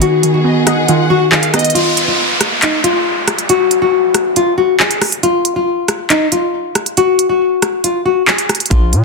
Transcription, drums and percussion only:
0.02 closed hi-hat
0.23 closed hi-hat
0.67 cross-stick, closed hi-hat
0.88 closed hi-hat
1.32 clap
1.43 closed hi-hat
1.54 cross-stick, closed hi-hat
1.59 closed hi-hat
1.64 closed hi-hat
1.70 closed hi-hat
1.75 closed hi-hat
1.97 closed hi-hat
2.41 cross-stick, closed hi-hat
2.62 clap, closed hi-hat
2.84 closed hi-hat
3.28 cross-stick, closed hi-hat
3.38 closed hi-hat
3.49 closed hi-hat
3.71 closed hi-hat
4.14 cross-stick, closed hi-hat
4.36 closed hi-hat
4.80 clap
4.91 closed hi-hat
5.02 cross-stick, closed hi-hat, open hi-hat
5.12 closed hi-hat
5.23 closed hi-hat
5.45 closed hi-hat
5.88 cross-stick, closed hi-hat
6.10 clap, closed hi-hat
6.32 closed hi-hat
6.75 cross-stick, closed hi-hat
6.86 closed hi-hat
6.97 closed hi-hat
7.19 closed hi-hat
7.62 cross-stick, closed hi-hat
7.84 closed hi-hat
8.28 clap
8.38 closed hi-hat
8.49 cross-stick, closed hi-hat
8.55 closed hi-hat
8.60 closed hi-hat
8.66 closed hi-hat
8.71 kick, closed hi-hat
8.93 closed hi-hat

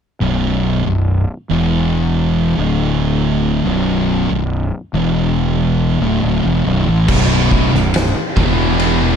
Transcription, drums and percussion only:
7.09 kick, crash
7.51 kick
7.75 snare
7.94 snare, ride bell
8.37 kick
8.80 ride bell

